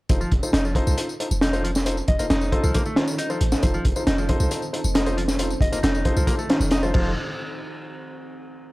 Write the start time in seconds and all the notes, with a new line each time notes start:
0.09 F1 C4 D#4 F4 A4 C5, kick, closed hi-hat, tambourine
0.21 F3, tambourine
0.32 F1, kick, closed hi-hat
0.43 D#4 F4 A4 C5, tambourine
0.53 F1 D#4, snare, closed hi-hat, tambourine
0.65 F3, tambourine
0.75 D#4 F4 A4 C5, kick, closed hi-hat
0.87 C2, tambourine
0.98 D#4 F4 A4 C5, closed hi-hat, tambourine
1.09 tambourine
1.20 D#4 F4 A4 C5, closed hi-hat
1.31 F1, tambourine
1.41 D#4, snare, closed hi-hat, tambourine
1.53 D#4 F4 A4 C5, closed hi-hat, tambourine
1.64 F3, closed hi-hat
1.75 snare, tambourine
1.86 D#4 F4 A4 C5, closed hi-hat, tambourine
1.97 tambourine
2.08 F1 D#5, kick, closed hi-hat
2.19 F1 A#3 D#4 F4 A4 C5 D#5, closed hi-hat, tambourine
2.30 F1 D#4, snare, closed hi-hat, tambourine
2.41 tambourine
2.52 D#4 F4 A4 C5, kick, closed hi-hat
2.63 C2 F3 A4, tambourine
2.74 A#3 D#4 F4 A4 C5, kick, closed hi-hat, tambourine
2.86 A3, tambourine
2.96 D#3 D#4 F4 A4 C5, snare, closed hi-hat
3.08 tambourine
3.18 D#4, closed hi-hat, tambourine
3.30 F3 D#4 F4 A4 C5, tambourine
3.41 A1, closed hi-hat
3.52 snare, tambourine
3.63 F1 D#4 F4 A4 C5, kick, closed hi-hat, tambourine
3.74 F3, tambourine
3.85 F1, kick, closed hi-hat
3.96 D#4 F4 A4 C5, tambourine
4.07 F1 D#4, snare, closed hi-hat, tambourine
4.18 F3, tambourine
4.29 D#4 F4 A4 C5, kick, closed hi-hat
4.40 C2, tambourine
4.51 D#4 F4 A4 C5, closed hi-hat, tambourine
4.62 tambourine
4.73 D#4 F4 A4 C5, closed hi-hat
4.84 F1, tambourine
4.95 D#4, snare, closed hi-hat, tambourine
5.06 D#4 F4 A4 C5, closed hi-hat, tambourine
5.17 F3, closed hi-hat
5.28 snare, tambourine
5.39 D#4 F4 A4 C5, closed hi-hat, tambourine
5.50 tambourine
5.61 F1 D#5, kick, closed hi-hat
5.72 F1 A#3 D#4 F4 A4 C5 D#5, closed hi-hat, tambourine
5.83 F1 D#4, snare, closed hi-hat, tambourine
5.95 tambourine
6.05 D#4 F4 A4 C5, kick, closed hi-hat
6.17 C2 F3, tambourine
6.27 A#3 D#4 F4 A4 C5, kick, closed hi-hat, tambourine
6.39 A3, tambourine
6.50 D#3 D#4 F4 A4 C5, snare, closed hi-hat
6.60 F1, tambourine
6.71 D#4, snare, closed hi-hat, tambourine
6.83 F3 D#4 F4 A4 C5, tambourine
6.94 F1 F3 D#4 F4 A4 C5, kick, crash